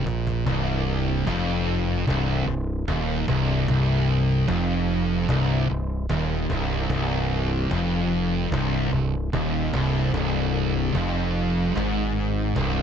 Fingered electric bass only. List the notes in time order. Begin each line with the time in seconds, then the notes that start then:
0.05 A#1
0.46 C1
1.27 F1
2.08 C1
2.47 C1
2.88 D#1
3.28 C1
3.69 C1
4.48 F1
5.29 C1
5.70 C1
6.10 D#1
6.50 C1
6.89 C1
7.71 F1
8.51 C1
8.91 C1
9.33 D#1
9.73 C1
10.14 C1
10.94 F1
11.75 G#1
12.56 C1